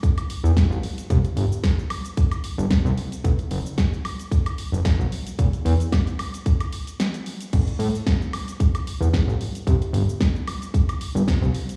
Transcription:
0.03 kick loud
0.03 closed hi-hat medium
0.03 shaker medium
0.18 closed hi-hat medium
0.18 high woodblock medium
0.18 shaker soft
0.30 open hi-hat loud
0.44 0.52 E2 medium
0.44 shaker medium
0.57 kick loud
0.57 snare loud
0.57 closed hi-hat medium
0.57 shaker medium
0.70 0.78 A1 loud
0.70 shaker soft
0.83 open hi-hat medium
0.98 closed hi-hat soft
0.98 shaker medium
1.10 1.19 C2 loud
1.10 kick loud
1.10 closed hi-hat medium
1.10 shaker medium
1.25 closed hi-hat soft
1.25 shaker soft
1.36 1.46 G1 loud
1.36 open hi-hat loud
1.52 shaker medium
1.64 kick loud
1.64 snare loud
1.64 closed hi-hat medium
1.64 shaker medium
1.79 shaker soft
1.90 open hi-hat medium
1.90 high woodblock medium
2.05 closed hi-hat soft
2.05 shaker medium
2.17 kick loud
2.17 closed hi-hat medium
2.17 shaker medium
2.31 closed hi-hat medium
2.31 high woodblock medium
2.31 shaker soft
2.44 open hi-hat loud
2.58 2.66 G1 medium
2.58 shaker medium
2.71 kick loud
2.71 snare loud
2.71 closed hi-hat medium
2.71 shaker medium
2.85 2.93 C2 loud
2.85 shaker soft
2.98 open hi-hat medium
3.12 closed hi-hat medium
3.12 shaker medium
3.24 3.33 B1 loud
3.24 kick loud
3.24 closed hi-hat medium
3.24 shaker medium
3.39 closed hi-hat soft
3.39 shaker soft
3.51 3.60 F#1 loud
3.51 open hi-hat loud
3.66 shaker medium
3.78 kick loud
3.78 snare loud
3.78 closed hi-hat medium
3.78 shaker medium
3.93 shaker soft
4.05 open hi-hat medium
4.05 high woodblock medium
4.19 closed hi-hat soft
4.19 shaker medium
4.31 kick loud
4.31 closed hi-hat medium
4.31 shaker medium
4.46 closed hi-hat medium
4.46 high woodblock medium
4.46 shaker soft
4.58 open hi-hat loud
4.72 4.80 F#1 medium
4.72 shaker medium
4.85 kick loud
4.85 snare loud
4.85 closed hi-hat medium
4.85 shaker medium
4.99 5.07 B1 loud
4.99 shaker soft
5.12 open hi-hat medium
5.27 closed hi-hat medium
5.27 shaker medium
5.39 5.48 E1 loud
5.39 kick loud
5.39 closed hi-hat medium
5.39 shaker medium
5.53 closed hi-hat soft
5.53 shaker soft
5.65 5.74 E2 loud
5.65 open hi-hat loud
5.80 closed hi-hat soft
5.80 shaker medium
5.92 kick loud
5.92 snare loud
5.92 closed hi-hat medium
5.92 high woodblock medium
5.92 shaker medium
6.07 closed hi-hat soft
6.07 shaker soft
6.19 open hi-hat medium
6.19 high woodblock medium
6.34 closed hi-hat soft
6.34 shaker medium
6.46 kick loud
6.46 closed hi-hat medium
6.46 shaker medium
6.61 closed hi-hat medium
6.61 high woodblock medium
6.61 shaker soft
6.73 open hi-hat loud
6.87 closed hi-hat soft
6.87 shaker medium
7.00 snare loud
7.00 closed hi-hat medium
7.00 shaker medium
7.14 closed hi-hat soft
7.14 shaker soft
7.26 open hi-hat medium
7.41 closed hi-hat medium
7.41 shaker medium
7.53 7.62 A1 loud
7.53 kick loud
7.53 closed hi-hat medium
7.53 crash medium
7.53 shaker medium
7.68 closed hi-hat soft
7.68 shaker soft
7.79 7.88 A2 loud
7.79 open hi-hat loud
7.95 shaker medium
8.07 kick loud
8.07 snare loud
8.07 closed hi-hat medium
8.07 shaker medium
8.22 shaker soft
8.33 open hi-hat medium
8.33 high woodblock medium
8.48 closed hi-hat soft
8.48 shaker medium
8.60 kick loud
8.60 closed hi-hat medium
8.60 shaker medium
8.75 closed hi-hat medium
8.75 high woodblock medium
8.75 shaker soft
8.87 open hi-hat loud
9.01 9.09 E2 medium
9.01 shaker medium
9.13 kick loud
9.13 snare loud
9.13 closed hi-hat medium
9.13 shaker medium
9.27 9.35 A1 loud
9.27 shaker soft
9.41 open hi-hat medium
9.55 closed hi-hat medium
9.55 shaker medium
9.67 9.76 C2 loud
9.67 kick loud
9.67 closed hi-hat medium
9.67 shaker medium
9.82 closed hi-hat soft
9.82 shaker soft
9.93 10.03 G1 loud
9.93 open hi-hat loud
10.09 shaker medium
10.21 kick loud
10.21 snare loud
10.21 closed hi-hat medium
10.21 shaker soft
10.36 shaker soft
10.47 open hi-hat loud
10.47 high woodblock medium
10.62 closed hi-hat soft
10.62 shaker medium
10.74 kick loud
10.74 closed hi-hat medium
10.74 shaker medium
10.89 closed hi-hat medium
10.89 high woodblock medium
10.89 shaker soft
11.01 open hi-hat loud
11.15 11.23 G1 medium
11.15 shaker medium
11.28 kick loud
11.28 snare loud
11.28 closed hi-hat medium
11.28 shaker medium
11.42 11.50 C2 loud
11.42 shaker soft
11.55 open hi-hat loud
11.69 closed hi-hat medium
11.69 shaker medium

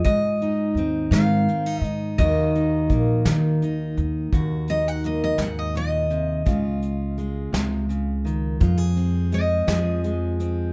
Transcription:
0.00 0.77 G#3 medium
0.04 2.14 G#2 medium
0.04 0.73 G#2 medium
0.04 1.11 D#5 medium
0.04 kick medium
0.04 closed hi-hat medium
0.42 1.48 D#4 medium
0.42 closed hi-hat soft
0.74 1.09 D#2 medium
0.74 1.48 C4 medium
0.74 closed hi-hat soft
1.11 1.45 G#2 loud
1.11 2.19 D#3 medium
1.11 1.84 F5 medium
1.11 snare medium
1.11 closed hi-hat medium
1.48 1.66 C4 medium
1.48 closed hi-hat soft
1.66 2.19 D#4 soft
1.81 2.16 G#2 medium
1.81 2.15 D#5 medium
1.81 closed hi-hat soft
2.18 4.31 D#2 medium
2.18 2.87 D#2 medium
2.18 3.25 D#3 medium
2.18 2.89 A#3 medium
2.18 2.54 D#4 medium
2.18 3.93 D#5 medium
2.18 kick medium
2.18 closed hi-hat medium
2.23 4.30 F#4 medium
2.55 3.62 D#4 medium
2.55 closed hi-hat soft
2.89 3.24 A#1 medium
2.89 4.29 A#3 soft
2.89 kick medium
2.89 closed hi-hat soft
3.25 3.59 D#3 medium
3.25 6.47 D#3 medium
3.25 snare medium
3.25 closed hi-hat medium
3.62 4.29 D#4 medium
3.62 closed hi-hat soft
3.97 4.31 D#2 medium
3.97 closed hi-hat soft
4.33 5.36 D#2 medium
4.33 5.39 D#2 medium
4.33 6.43 F#4 medium
4.33 kick medium
4.33 closed hi-hat medium
4.68 6.44 D#4 medium
4.68 4.88 D#5 medium
4.68 closed hi-hat soft
4.88 5.05 F#5 medium
5.04 6.43 A#3 soft
5.04 5.22 D#5 medium
5.04 closed hi-hat medium
5.24 5.40 D#5 medium
5.38 6.42 D#2 medium
5.38 5.75 G#2 medium
5.38 5.59 F#5 medium
5.38 snare medium
5.38 closed hi-hat medium
5.59 5.76 D#5 medium
5.75 6.10 A#2 medium
5.75 7.15 D#5 medium
5.75 closed hi-hat soft
6.10 6.45 C3 medium
6.10 closed hi-hat soft
6.46 7.50 C#2 medium
6.46 7.54 C#3 medium
6.46 8.59 F4 medium
6.46 kick medium
6.46 closed hi-hat medium
6.82 closed hi-hat soft
7.18 9.32 G#3 soft
7.18 closed hi-hat soft
7.53 8.57 C#2 medium
7.53 7.89 C3 medium
7.53 snare medium
7.53 closed hi-hat medium
7.89 8.26 C#3 medium
7.89 closed hi-hat soft
8.25 8.61 D#3 medium
8.25 closed hi-hat soft
8.60 10.72 F2 medium
8.60 9.65 F2 medium
8.60 8.77 F4 medium
8.60 kick medium
8.60 closed hi-hat medium
8.77 9.67 G#4 medium
8.96 10.39 C4 medium
8.96 closed hi-hat soft
9.32 10.03 G#3 medium
9.32 10.73 D#5 medium
9.32 closed hi-hat medium
9.67 10.72 F2 medium
9.67 10.72 F3 medium
9.67 10.72 G#4 medium
9.67 snare medium
9.67 closed hi-hat medium
10.04 10.73 G#3 medium
10.04 closed hi-hat soft
10.40 10.73 C4 medium
10.40 closed hi-hat medium

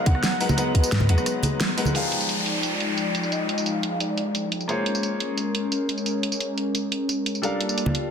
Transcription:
0.00 1.92 F#3 medium
0.00 0.40 G#3 medium
0.00 1.92 B3 medium
0.00 0.40 D#4 medium
0.00 0.41 A#4 medium
0.00 0.41 B4 medium
0.00 0.41 F#5 loud
0.00 1.92 A#5 medium
0.06 0.59 F#5 loud
0.06 kick loud
0.06 closed hi-hat loud
0.06 high conga medium
0.15 cross-stick medium
0.23 snare loud
0.23 closed hi-hat medium
0.23 tambourine medium
0.40 0.55 G#3 medium
0.40 0.55 D#4 medium
0.40 0.56 A#4 medium
0.40 0.56 B4 medium
0.40 0.56 F#5 medium
0.40 open hi-hat medium
0.40 tambourine soft
0.49 tambourine soft
0.49 high conga medium
0.56 1.06 G#3 medium
0.56 1.07 D#4 medium
0.56 1.78 B4 loud
0.56 1.07 B4 medium
0.56 1.08 F#5 medium
0.56 1.07 A#5 medium
0.56 closed hi-hat medium
0.56 tambourine medium
0.75 kick medium
0.75 closed hi-hat loud
0.83 tambourine medium
0.92 1.10 G#2 medium
0.92 snare loud
0.92 closed hi-hat medium
0.92 tambourine medium
1.00 high conga loud
1.08 1.17 D#2 loud
1.08 1.41 G#3 medium
1.08 1.41 D#4 medium
1.08 1.41 B4 medium
1.08 1.42 F#5 medium
1.08 1.41 A#5 medium
1.08 closed hi-hat loud
1.18 cross-stick soft
1.18 tambourine soft
1.26 cross-stick medium
1.26 closed hi-hat medium
1.26 tambourine medium
1.43 closed hi-hat loud
1.43 tambourine soft
1.43 high conga medium
1.60 snare loud
1.60 closed hi-hat medium
1.60 tambourine medium
1.69 cross-stick soft
1.77 1.92 G#3 medium
1.77 1.92 D#4 medium
1.77 1.93 A#4 medium
1.77 1.93 B4 medium
1.77 1.93 F#5 medium
1.77 open hi-hat medium
1.77 tambourine soft
1.85 tambourine soft
1.85 high conga medium
1.93 4.66 F3 medium
1.93 7.39 G#3 medium
1.93 4.67 D#4 medium
1.93 4.66 D#4 medium
1.93 4.67 G4 medium
1.93 4.67 G#4 medium
1.93 3.33 D5 loud
1.93 4.68 F5 medium
1.93 4.66 G5 medium
1.93 closed hi-hat medium
1.93 tambourine soft
1.93 downlifter medium
2.12 closed hi-hat medium
2.21 tambourine medium
2.29 closed hi-hat medium
2.29 tambourine soft
2.46 closed hi-hat medium
2.63 closed hi-hat medium
2.63 tambourine soft
2.80 closed hi-hat medium
2.98 closed hi-hat medium
2.98 tambourine soft
3.15 closed hi-hat medium
3.15 tambourine soft
3.23 tambourine soft
3.32 3.68 D#5 loud
3.32 closed hi-hat medium
3.32 tambourine soft
3.49 closed hi-hat medium
3.58 tambourine medium
3.66 4.02 F5 loud
3.66 closed hi-hat medium
3.66 tambourine soft
3.83 closed hi-hat medium
4.00 4.52 D5 medium
4.00 closed hi-hat medium
4.00 tambourine soft
4.18 closed hi-hat medium
4.35 closed hi-hat medium
4.35 tambourine soft
4.52 closed hi-hat medium
4.52 tambourine soft
4.61 tambourine soft
4.68 7.41 A#3 medium
4.68 7.41 C#4 medium
4.68 7.41 F4 medium
4.68 7.41 G#4 medium
4.68 7.41 A#4 medium
4.68 7.42 C5 medium
4.68 7.42 C#5 medium
4.68 closed hi-hat medium
4.68 tambourine soft
4.86 closed hi-hat medium
4.95 tambourine medium
5.03 closed hi-hat medium
5.03 tambourine soft
5.20 closed hi-hat medium
5.38 closed hi-hat medium
5.38 tambourine soft
5.55 closed hi-hat medium
5.72 closed hi-hat medium
5.72 tambourine soft
5.89 closed hi-hat medium
5.89 tambourine soft
5.98 tambourine soft
6.06 closed hi-hat medium
6.06 tambourine soft
6.23 closed hi-hat medium
6.32 tambourine medium
6.40 closed hi-hat medium
6.40 tambourine soft
6.58 closed hi-hat medium
6.75 closed hi-hat medium
6.75 tambourine soft
6.92 closed hi-hat medium
7.09 closed hi-hat medium
7.09 tambourine soft
7.26 closed hi-hat medium
7.26 tambourine soft
7.35 tambourine soft
7.42 8.11 G3 medium
7.42 8.11 A#3 medium
7.42 8.11 D4 medium
7.42 8.11 F4 medium
7.42 8.11 A4 medium
7.42 8.11 A#4 medium
7.42 8.08 D5 loud
7.42 8.11 F5 medium
7.42 8.11 A5 medium
7.42 closed hi-hat medium
7.42 tambourine soft
7.61 closed hi-hat medium
7.69 tambourine medium
7.78 closed hi-hat medium
7.78 tambourine soft
7.86 high conga medium
7.95 closed hi-hat medium

